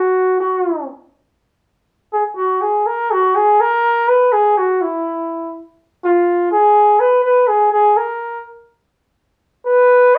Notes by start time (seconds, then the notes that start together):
Already playing: F#4
0.40 F#4
2.13 G#4
2.36 F#4
2.61 G#4
2.87 A#4
3.12 F#4
3.36 G#4
3.61 A#4
4.09 B4
4.33 G#4
4.58 F#4
4.82 E4
6.04 F4
6.52 G#4
7.00 B4
7.25 B4
7.48 G#4
7.72 G#4
7.97 A#4
9.66 B4